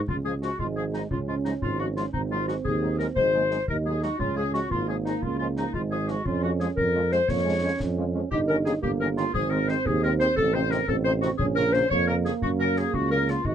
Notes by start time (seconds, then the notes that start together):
0.08 C#2 F4, concert bass drum
0.24 F3 G#3 C#4 G#4
0.41 F3 G#3 C#4 F#4, snare
0.58 G#1 G#3 F4, concert bass drum
0.76 F3 G#3 C#4 G#4
0.93 F3 G#3 C#4 D#4, snare
1.10 C#2 C#4 F4, concert bass drum
1.27 F3 G#3 C#4 F4
1.44 F3 G#3 C#4 D#4, snare
1.62 G#1 F4, concert bass drum
1.79 F3 G#3 C#4 F#4
1.96 F3 G#3 C#4 F4, snare
2.13 G#1 C4 D#4, concert bass drum
2.30 F#3 G#3 D#4 F4
2.47 F#3 G#3 D#4 F#4, snare
2.65 D#2 G#4, concert bass drum
2.82 F#3 G#3 D#4
2.98 F#3 G#3 D#4 A#4, snare
3.16 G#1 G#3 C5, concert bass drum
3.34 F#3 G#3 A#3 D#4
3.51 F#3 G#3 C4 D#4, snare
3.68 D#2 D#4 A#4, concert bass drum
3.85 F#3 G#3 D#4 G#4
4.02 F#3 G#3 D#4 F#4, snare
4.19 C#2 C#4 F4, concert bass drum
4.36 F3 G#3 C#4 G#4
4.53 F3 G#3 C#4 F#4, snare
4.71 G#1 A#3 F4, concert bass drum
4.88 F3 G#3 C#4 G#4
5.05 F3 G#3 C#4 D#4, snare
5.22 C#2 F4, concert bass drum
5.39 F3 G#3 C#4 F4
5.56 F3 G#3 C#4 D#4, snare
5.73 G#1 G#3 F4, concert bass drum
5.90 F3 G#3 C#4 G#4
6.08 F3 G#3 C#4 F#4, snare
6.25 F2 C#4 F4, concert bass drum
6.42 F3 G#3 C#4 F#4
6.60 F3 G#3 C#4 G#4, snare
6.77 F2 A#4, concert bass drum
6.94 F3 G#3 C#4
7.12 F3 G#3 C#4 C5, snare
7.28 F2 A#3 C#5, concert bass drum, snare
7.45 F3 G#3 C#4
7.62 F3 G#3 C#4
7.80 F2, concert bass drum, snare
7.97 F3 G#3 C#4
8.14 F3 G#3 C#4
8.31 G1 D#4 G4, concert bass drum
8.48 D#3 A#3 C#4 D#4 A#4
8.65 D#3 A#3 C#4 D#4 G#4, snare
8.82 G1 A#3 G4, concert bass drum
9.00 D#3 A#3 C#4 D#4 A#4
9.17 D#3 A#3 C#4 D#4 F4, snare
9.34 G#1 C4 G#4, concert bass drum
9.51 D#3 G#3 C4 D#4 A#4
9.68 D#3 G#3 C4 D#4 C5, snare
9.86 D#2 G#4, concert bass drum
10.02 D#3 G#3 C4 D#4 A#4
10.19 D#3 G#3 C4 D#4 C5, snare
10.36 A1 A4, concert bass drum
10.53 C3 F3 C4 D#4 C5
10.71 C3 F3 C4 D#4 A#4, snare
10.88 A1 C4 A4, concert bass drum
11.04 C3 F3 C4 D#4 C5
11.21 C3 F3 C4 D#4 F#4, snare
11.38 A#1 C#4 G#4, concert bass drum
11.55 C#3 F3 A#3 C#4 A#4
11.73 C#3 F3 A#3 C#4 C5, snare
11.90 F2 A#3 C#5, concert bass drum
12.07 C#3 F3 A#3 C#4 A#4
12.25 C#3 F3 A#3 C#4 G#4, snare
12.42 F#2 F#4, concert bass drum
12.59 C#3 F#3 A#3 C#4 A#4
12.76 C#3 F#3 A#3 C#4 G#4, snare
12.93 C#2 F#4, concert bass drum
13.11 C#3 F#3 A#3 C#4 A#4
13.28 C#3 F#3 A#3 C#4 F4, snare
13.44 G#1 D#4 F#4, concert bass drum